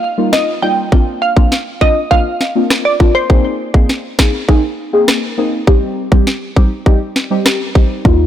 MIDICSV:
0, 0, Header, 1, 5, 480
1, 0, Start_track
1, 0, Tempo, 594059
1, 745, Time_signature, 4, 2, 24, 8
1, 6680, End_track
2, 0, Start_track
2, 0, Title_t, "Synth pluck"
2, 0, Program_c, 0, 84
2, 0, Note_on_c, 0, 77, 100
2, 123, Note_off_c, 0, 77, 0
2, 265, Note_on_c, 0, 75, 92
2, 341, Note_off_c, 0, 75, 0
2, 505, Note_on_c, 0, 79, 81
2, 581, Note_off_c, 0, 79, 0
2, 985, Note_on_c, 0, 77, 74
2, 1061, Note_off_c, 0, 77, 0
2, 1465, Note_on_c, 0, 75, 83
2, 1618, Note_off_c, 0, 75, 0
2, 1704, Note_on_c, 0, 77, 96
2, 2042, Note_off_c, 0, 77, 0
2, 2304, Note_on_c, 0, 74, 76
2, 2381, Note_off_c, 0, 74, 0
2, 2543, Note_on_c, 0, 72, 81
2, 2620, Note_off_c, 0, 72, 0
2, 6680, End_track
3, 0, Start_track
3, 0, Title_t, "Synth stab"
3, 0, Program_c, 1, 62
3, 141, Note_on_c, 1, 55, 77
3, 143, Note_on_c, 1, 58, 68
3, 145, Note_on_c, 1, 63, 73
3, 146, Note_on_c, 1, 65, 83
3, 474, Note_off_c, 1, 55, 0
3, 475, Note_off_c, 1, 58, 0
3, 476, Note_off_c, 1, 63, 0
3, 477, Note_off_c, 1, 65, 0
3, 502, Note_on_c, 1, 55, 77
3, 503, Note_on_c, 1, 58, 71
3, 505, Note_on_c, 1, 63, 73
3, 506, Note_on_c, 1, 65, 84
3, 724, Note_off_c, 1, 55, 0
3, 725, Note_off_c, 1, 58, 0
3, 726, Note_off_c, 1, 63, 0
3, 726, Note_off_c, 1, 65, 0
3, 742, Note_on_c, 1, 58, 93
3, 744, Note_on_c, 1, 60, 80
3, 746, Note_on_c, 1, 62, 79
3, 747, Note_on_c, 1, 65, 96
3, 1075, Note_off_c, 1, 58, 0
3, 1075, Note_off_c, 1, 60, 0
3, 1076, Note_off_c, 1, 62, 0
3, 1077, Note_off_c, 1, 65, 0
3, 1102, Note_on_c, 1, 58, 75
3, 1104, Note_on_c, 1, 60, 68
3, 1105, Note_on_c, 1, 62, 68
3, 1107, Note_on_c, 1, 65, 82
3, 1207, Note_off_c, 1, 58, 0
3, 1208, Note_off_c, 1, 60, 0
3, 1209, Note_off_c, 1, 62, 0
3, 1210, Note_off_c, 1, 65, 0
3, 1463, Note_on_c, 1, 58, 80
3, 1464, Note_on_c, 1, 60, 68
3, 1466, Note_on_c, 1, 62, 69
3, 1467, Note_on_c, 1, 65, 85
3, 1568, Note_off_c, 1, 58, 0
3, 1568, Note_off_c, 1, 60, 0
3, 1569, Note_off_c, 1, 62, 0
3, 1570, Note_off_c, 1, 65, 0
3, 1703, Note_on_c, 1, 58, 90
3, 1704, Note_on_c, 1, 60, 84
3, 1706, Note_on_c, 1, 62, 88
3, 1707, Note_on_c, 1, 65, 99
3, 1807, Note_off_c, 1, 58, 0
3, 1808, Note_off_c, 1, 60, 0
3, 1809, Note_off_c, 1, 62, 0
3, 1810, Note_off_c, 1, 65, 0
3, 2063, Note_on_c, 1, 58, 74
3, 2064, Note_on_c, 1, 60, 66
3, 2065, Note_on_c, 1, 62, 71
3, 2068, Note_on_c, 1, 65, 81
3, 2395, Note_off_c, 1, 58, 0
3, 2396, Note_off_c, 1, 60, 0
3, 2396, Note_off_c, 1, 62, 0
3, 2397, Note_off_c, 1, 65, 0
3, 2422, Note_on_c, 1, 58, 77
3, 2424, Note_on_c, 1, 60, 71
3, 2425, Note_on_c, 1, 62, 72
3, 2427, Note_on_c, 1, 65, 81
3, 2644, Note_off_c, 1, 58, 0
3, 2645, Note_off_c, 1, 60, 0
3, 2646, Note_off_c, 1, 62, 0
3, 2647, Note_off_c, 1, 65, 0
3, 2662, Note_on_c, 1, 58, 91
3, 2663, Note_on_c, 1, 60, 80
3, 2665, Note_on_c, 1, 63, 80
3, 2666, Note_on_c, 1, 68, 98
3, 2994, Note_off_c, 1, 58, 0
3, 2995, Note_off_c, 1, 60, 0
3, 2996, Note_off_c, 1, 63, 0
3, 2997, Note_off_c, 1, 68, 0
3, 3022, Note_on_c, 1, 58, 76
3, 3024, Note_on_c, 1, 60, 69
3, 3025, Note_on_c, 1, 63, 68
3, 3027, Note_on_c, 1, 68, 82
3, 3127, Note_off_c, 1, 58, 0
3, 3128, Note_off_c, 1, 60, 0
3, 3129, Note_off_c, 1, 63, 0
3, 3130, Note_off_c, 1, 68, 0
3, 3382, Note_on_c, 1, 58, 76
3, 3384, Note_on_c, 1, 60, 72
3, 3385, Note_on_c, 1, 63, 71
3, 3387, Note_on_c, 1, 68, 88
3, 3487, Note_off_c, 1, 58, 0
3, 3488, Note_off_c, 1, 60, 0
3, 3489, Note_off_c, 1, 63, 0
3, 3490, Note_off_c, 1, 68, 0
3, 3622, Note_on_c, 1, 58, 91
3, 3623, Note_on_c, 1, 60, 84
3, 3625, Note_on_c, 1, 63, 89
3, 3627, Note_on_c, 1, 68, 103
3, 3727, Note_off_c, 1, 58, 0
3, 3728, Note_off_c, 1, 60, 0
3, 3729, Note_off_c, 1, 63, 0
3, 3730, Note_off_c, 1, 68, 0
3, 3982, Note_on_c, 1, 58, 76
3, 3984, Note_on_c, 1, 60, 71
3, 3986, Note_on_c, 1, 63, 69
3, 3987, Note_on_c, 1, 68, 82
3, 4315, Note_off_c, 1, 58, 0
3, 4315, Note_off_c, 1, 60, 0
3, 4316, Note_off_c, 1, 63, 0
3, 4317, Note_off_c, 1, 68, 0
3, 4343, Note_on_c, 1, 58, 77
3, 4344, Note_on_c, 1, 60, 72
3, 4346, Note_on_c, 1, 63, 72
3, 4347, Note_on_c, 1, 68, 83
3, 4564, Note_off_c, 1, 58, 0
3, 4565, Note_off_c, 1, 60, 0
3, 4566, Note_off_c, 1, 63, 0
3, 4567, Note_off_c, 1, 68, 0
3, 4582, Note_on_c, 1, 55, 88
3, 4584, Note_on_c, 1, 60, 80
3, 4585, Note_on_c, 1, 63, 82
3, 4587, Note_on_c, 1, 67, 102
3, 4915, Note_off_c, 1, 55, 0
3, 4915, Note_off_c, 1, 60, 0
3, 4916, Note_off_c, 1, 63, 0
3, 4917, Note_off_c, 1, 67, 0
3, 4942, Note_on_c, 1, 55, 75
3, 4944, Note_on_c, 1, 60, 67
3, 4945, Note_on_c, 1, 63, 69
3, 4947, Note_on_c, 1, 67, 78
3, 5047, Note_off_c, 1, 55, 0
3, 5048, Note_off_c, 1, 60, 0
3, 5049, Note_off_c, 1, 63, 0
3, 5050, Note_off_c, 1, 67, 0
3, 5302, Note_on_c, 1, 55, 76
3, 5304, Note_on_c, 1, 60, 71
3, 5306, Note_on_c, 1, 63, 73
3, 5307, Note_on_c, 1, 67, 83
3, 5407, Note_off_c, 1, 55, 0
3, 5408, Note_off_c, 1, 60, 0
3, 5409, Note_off_c, 1, 63, 0
3, 5410, Note_off_c, 1, 67, 0
3, 5542, Note_on_c, 1, 55, 93
3, 5543, Note_on_c, 1, 60, 84
3, 5545, Note_on_c, 1, 63, 85
3, 5547, Note_on_c, 1, 67, 106
3, 5647, Note_off_c, 1, 55, 0
3, 5648, Note_off_c, 1, 60, 0
3, 5649, Note_off_c, 1, 63, 0
3, 5649, Note_off_c, 1, 67, 0
3, 5902, Note_on_c, 1, 55, 76
3, 5904, Note_on_c, 1, 60, 70
3, 5906, Note_on_c, 1, 63, 73
3, 5907, Note_on_c, 1, 67, 87
3, 6234, Note_off_c, 1, 55, 0
3, 6235, Note_off_c, 1, 60, 0
3, 6236, Note_off_c, 1, 63, 0
3, 6237, Note_off_c, 1, 67, 0
3, 6262, Note_on_c, 1, 55, 79
3, 6263, Note_on_c, 1, 60, 70
3, 6265, Note_on_c, 1, 63, 73
3, 6267, Note_on_c, 1, 67, 86
3, 6484, Note_off_c, 1, 55, 0
3, 6485, Note_off_c, 1, 60, 0
3, 6485, Note_off_c, 1, 63, 0
3, 6486, Note_off_c, 1, 67, 0
3, 6502, Note_on_c, 1, 55, 91
3, 6504, Note_on_c, 1, 58, 82
3, 6505, Note_on_c, 1, 63, 78
3, 6507, Note_on_c, 1, 65, 97
3, 6680, Note_off_c, 1, 55, 0
3, 6680, Note_off_c, 1, 58, 0
3, 6680, Note_off_c, 1, 63, 0
3, 6680, Note_off_c, 1, 65, 0
3, 6680, End_track
4, 0, Start_track
4, 0, Title_t, "808-style bass"
4, 0, Program_c, 2, 38
4, 6504, Note_on_c, 2, 39, 98
4, 6680, Note_off_c, 2, 39, 0
4, 6680, End_track
5, 0, Start_track
5, 0, Title_t, "Drums"
5, 265, Note_on_c, 9, 37, 100
5, 265, Note_on_c, 9, 38, 118
5, 346, Note_off_c, 9, 37, 0
5, 346, Note_off_c, 9, 38, 0
5, 745, Note_on_c, 9, 36, 103
5, 825, Note_off_c, 9, 36, 0
5, 1103, Note_on_c, 9, 36, 95
5, 1184, Note_off_c, 9, 36, 0
5, 1227, Note_on_c, 9, 38, 64
5, 1308, Note_off_c, 9, 38, 0
5, 1464, Note_on_c, 9, 36, 91
5, 1545, Note_off_c, 9, 36, 0
5, 1705, Note_on_c, 9, 36, 80
5, 1785, Note_off_c, 9, 36, 0
5, 1945, Note_on_c, 9, 38, 65
5, 2025, Note_off_c, 9, 38, 0
5, 2185, Note_on_c, 9, 37, 100
5, 2185, Note_on_c, 9, 38, 119
5, 2266, Note_off_c, 9, 37, 0
5, 2266, Note_off_c, 9, 38, 0
5, 2424, Note_on_c, 9, 36, 98
5, 2505, Note_off_c, 9, 36, 0
5, 2665, Note_on_c, 9, 36, 106
5, 2745, Note_off_c, 9, 36, 0
5, 3023, Note_on_c, 9, 36, 92
5, 3104, Note_off_c, 9, 36, 0
5, 3146, Note_on_c, 9, 38, 64
5, 3227, Note_off_c, 9, 38, 0
5, 3383, Note_on_c, 9, 38, 105
5, 3384, Note_on_c, 9, 36, 86
5, 3385, Note_on_c, 9, 37, 84
5, 3464, Note_off_c, 9, 38, 0
5, 3465, Note_off_c, 9, 36, 0
5, 3466, Note_off_c, 9, 37, 0
5, 3624, Note_on_c, 9, 36, 86
5, 3705, Note_off_c, 9, 36, 0
5, 4105, Note_on_c, 9, 37, 98
5, 4105, Note_on_c, 9, 38, 116
5, 4186, Note_off_c, 9, 37, 0
5, 4186, Note_off_c, 9, 38, 0
5, 4585, Note_on_c, 9, 36, 114
5, 4665, Note_off_c, 9, 36, 0
5, 4943, Note_on_c, 9, 36, 99
5, 5024, Note_off_c, 9, 36, 0
5, 5066, Note_on_c, 9, 38, 68
5, 5147, Note_off_c, 9, 38, 0
5, 5304, Note_on_c, 9, 36, 87
5, 5385, Note_off_c, 9, 36, 0
5, 5544, Note_on_c, 9, 36, 83
5, 5625, Note_off_c, 9, 36, 0
5, 5785, Note_on_c, 9, 38, 60
5, 5865, Note_off_c, 9, 38, 0
5, 6025, Note_on_c, 9, 37, 98
5, 6025, Note_on_c, 9, 38, 120
5, 6106, Note_off_c, 9, 37, 0
5, 6106, Note_off_c, 9, 38, 0
5, 6265, Note_on_c, 9, 36, 94
5, 6345, Note_off_c, 9, 36, 0
5, 6505, Note_on_c, 9, 36, 112
5, 6585, Note_off_c, 9, 36, 0
5, 6680, End_track
0, 0, End_of_file